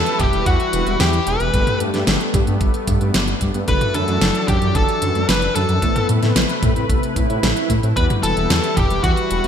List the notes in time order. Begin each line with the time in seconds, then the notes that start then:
Already playing: E3 G3 E4 A4 B4 A5
0.06 closed hi-hat
0.20 E1 E3 G4 G5, kick, closed hi-hat, mid tom
0.33 E1 G3, closed hi-hat
0.46 E2 E3 F#4 F#5, kick, closed hi-hat
0.60 closed hi-hat
0.73 E1 E3, closed hi-hat
0.87 E1 B3, closed hi-hat
1.00 E2 E3 G4 G5, snare, closed hi-hat
1.13 closed hi-hat
1.27 E1 E3 B4 B5, closed hi-hat
1.40 E1 G3, closed hi-hat
1.54 G1 G3 A3 B3 D4 G4 A4, kick, closed hi-hat
1.67 closed hi-hat, mid tom
1.80 G2 G3, closed hi-hat
1.94 G2 A3 B3 D4 G4 A4, snare, closed hi-hat
2.07 G1 G3, snare, closed hi-hat
2.21 closed hi-hat
2.34 G2 G3, kick, closed hi-hat, mid tom
2.47 G2 B3, closed hi-hat
2.61 G1 G3, kick, closed hi-hat
2.74 closed hi-hat
2.87 G2 G3, kick, closed hi-hat
3.01 G2 D4, closed hi-hat
3.14 G1 G3, snare, closed hi-hat
3.28 closed hi-hat
3.41 G2 G3, kick, closed hi-hat
3.54 G2 B3, closed hi-hat
3.68 F#1 D3 E3 F#3 A3 D4 E4 F#4 A4 B4 B5, kick, closed hi-hat
3.81 closed hi-hat, mid tom
3.94 F#2 D3 A4 A5, closed hi-hat
4.08 F#2 A3 D4 E4 F#4 A4, closed hi-hat
4.21 F#1 D3, snare, closed hi-hat
4.35 closed hi-hat
4.48 F#2 D3 G4 G5, kick, closed hi-hat, mid tom
4.62 F#2 F#3, closed hi-hat
4.75 F#1 D3 A4 A5, kick, closed hi-hat
4.89 closed hi-hat
5.02 F#2 D3, closed hi-hat
5.15 F#2 A3, closed hi-hat
5.28 F#1 D3 B4 B5, snare, closed hi-hat
5.42 closed hi-hat
5.55 F#2 D3 A4 A5, closed hi-hat
5.69 F#2 F#3, closed hi-hat
5.82 A1 C3 A3 B3 C4 E4 A4 B4, kick, closed hi-hat
5.96 closed hi-hat, mid tom
6.09 A2 A3, closed hi-hat
6.22 A2 B3 C4 E4 A4 B4, snare, closed hi-hat
6.36 A1 A3, snare, closed hi-hat
6.49 closed hi-hat
6.63 A2 A3, kick, closed hi-hat, mid tom
6.76 A2 C4, closed hi-hat
6.89 A1 A3, kick, closed hi-hat, swell
7.03 closed hi-hat
7.16 A2 A3, kick, closed hi-hat
7.29 A2 E4, closed hi-hat
7.43 A1 A3, snare, closed hi-hat
7.57 closed hi-hat
7.70 A2 A3, kick, closed hi-hat
7.83 A2 C4, closed hi-hat
7.96 E2 E3 G3 B3 E4 F#4 G4 B4 B5, kick, closed hi-hat
8.10 closed hi-hat, mid tom
8.23 E1 E3 A4 A5, closed hi-hat
8.37 E1 G3 B3 E4 F#4 G4, closed hi-hat
8.50 E2 E3, snare, closed hi-hat
8.64 closed hi-hat
8.76 E1 E3 G4 G5, kick, closed hi-hat, mid tom
8.90 E1 G3, closed hi-hat
9.03 E2 E3 F#4 F#5, kick, closed hi-hat
9.17 closed hi-hat
9.31 E1 E3, closed hi-hat
9.44 E1 B3, closed hi-hat